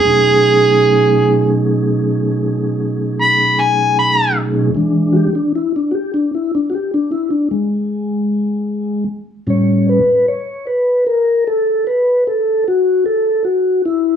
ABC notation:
X:1
M:12/8
L:1/16
Q:3/8=51
K:E
V:1 name="Harmonica"
G8 z8 b2 g2 b2 z2 | z24 | z24 |]
V:2 name="Tonewheel organ"
[B,,F,A,CDG]24 | [E,G,=D]2 [F=G] D E D [FG] D E D [FG] D E D ^G,8 z2 | [A,,=G,Cc]2 B2 c2 B2 ^A2 =A2 B2 A2 F2 A2 F2 E2 |]